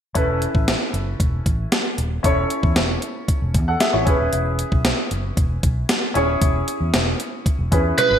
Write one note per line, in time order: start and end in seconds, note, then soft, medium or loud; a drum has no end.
0.14 0.45 E1 medium
0.14 2.20 C#4 medium
0.14 2.20 E4 medium
0.14 2.20 A4 medium
0.14 2.21 B4 medium
0.14 kick medium
0.14 closed hi-hat medium
0.42 closed hi-hat medium
0.55 0.74 A1 medium
0.55 kick medium
0.68 snare medium
0.68 closed hi-hat medium
0.93 1.13 F#1 medium
0.93 closed hi-hat medium
1.20 1.39 E1 medium
1.20 kick medium
1.20 closed hi-hat medium
1.46 1.65 A1 medium
1.46 kick medium
1.46 closed hi-hat medium
1.72 snare loud
1.72 closed hi-hat medium
1.98 2.18 D#1 medium
1.98 closed hi-hat medium
2.23 2.44 E1 medium
2.23 4.02 C#4 medium
2.23 3.52 E4 medium
2.23 3.52 A4 medium
2.23 3.53 C#5 medium
2.23 kick medium
2.23 closed hi-hat medium
2.50 closed hi-hat medium
2.63 2.78 E2 medium
2.63 kick medium
2.76 2.96 E1 medium
2.76 snare medium
2.76 closed hi-hat medium
3.02 closed hi-hat medium
3.28 kick medium
3.28 closed hi-hat medium
3.42 3.56 E1 medium
3.54 3.74 E2 medium
3.54 kick medium
3.54 closed hi-hat medium
3.68 3.80 A4 soft
3.68 3.80 F#5 medium
3.80 3.93 G#4 soft
3.80 3.93 E5 medium
3.80 snare loud
3.80 closed hi-hat medium
3.93 4.04 A1 medium
3.93 4.05 E4 soft
3.93 4.18 C#5 medium
4.05 4.16 E1 medium
4.05 6.11 C#4 medium
4.05 6.11 E4 medium
4.05 6.12 G#4 medium
4.05 6.12 B4 medium
4.05 kick medium
4.05 closed hi-hat medium
4.20 4.30 D#1 medium
4.33 4.62 E1 medium
4.33 closed hi-hat medium
4.59 closed hi-hat medium
4.72 4.92 B1 medium
4.72 kick medium
4.85 snare medium
4.85 closed hi-hat medium
5.11 5.31 F#1 medium
5.11 closed hi-hat medium
5.37 5.57 E1 medium
5.37 kick medium
5.37 closed hi-hat medium
5.63 5.83 B1 medium
5.63 kick medium
5.63 closed hi-hat medium
5.89 snare loud
5.89 closed hi-hat medium
6.14 6.35 D#1 medium
6.14 7.68 C#4 medium
6.14 7.69 E4 medium
6.14 7.69 G#4 medium
6.14 7.69 C#5 medium
6.14 closed hi-hat medium
6.42 6.61 E1 medium
6.42 kick medium
6.42 closed hi-hat medium
6.68 closed hi-hat medium
6.81 6.90 E2 medium
6.94 7.13 E1 medium
6.94 snare loud
6.94 closed hi-hat medium
7.20 closed hi-hat medium
7.46 kick medium
7.46 closed hi-hat medium
7.59 7.69 E1 medium
7.72 7.91 E2 medium
7.72 8.19 C#4 medium
7.72 8.19 E4 soft
7.72 8.19 G#4 soft
7.72 8.19 B4 medium
7.72 kick medium
7.72 closed hi-hat medium
7.98 8.19 B4 medium
7.98 closed hi-hat medium
7.98 high tom soft
8.11 8.19 G#1 medium